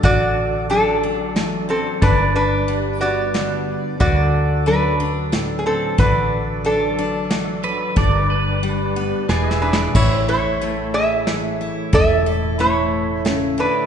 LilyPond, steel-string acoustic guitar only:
\new Staff \with { instrumentName = "Steel-string acoustic guitar" } { \clef bass \time 3/4 \key d \mixolydian \tempo 4 = 91 << { r4. d'4. | r4. b4. | r4. d'4. | r4. d'4. |
r4. b8 r4 | \key a \major r8 a'2 e'8 | r8 a'2~ a'8 | } \\ { d4 fis4 e8 fis8 | g,4 g4 d4 | d4 fis4 a,4 | d4 fis4 e8 fis8 |
g,4 g4 e4 | a,4 a4 e4 | a,4 a4 cis8 d8 | } >> }